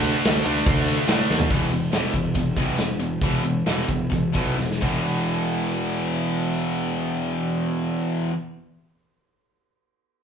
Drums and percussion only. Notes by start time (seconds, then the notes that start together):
0.04 ride
0.25 snare, ride
0.46 ride
0.66 kick, ride
0.88 ride
1.08 snare, ride
1.31 snare
1.40 floor tom
1.50 kick, closed hi-hat
1.71 closed hi-hat
1.92 snare, closed hi-hat
2.14 kick, closed hi-hat
2.35 kick, closed hi-hat
2.57 kick, closed hi-hat
2.78 snare, closed hi-hat
3.00 closed hi-hat
3.21 kick, closed hi-hat
3.44 closed hi-hat
3.66 snare, closed hi-hat
3.89 kick, closed hi-hat
4.12 kick, closed hi-hat
4.35 kick, closed hi-hat
4.60 snare
4.71 snare
4.82 kick, crash